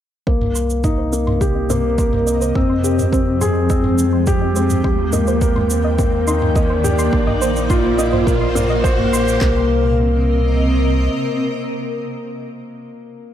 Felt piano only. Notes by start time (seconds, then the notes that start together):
0.27 A#3
0.84 D#4
1.13 A#3
1.41 G4
1.70 A#3
1.98 A#4
2.56 C4
2.84 G4
3.13 C4
3.41 G#4
3.70 C4
4.27 G4
4.56 C4
4.84 G4
5.13 A#3
5.41 A#4
5.99 A#3
6.27 D#4
6.56 A#3
6.84 G4
7.13 A#3
7.70 F4
7.98 A#3
8.26 A#4
8.55 A#3
8.84 C5
9.41 A#3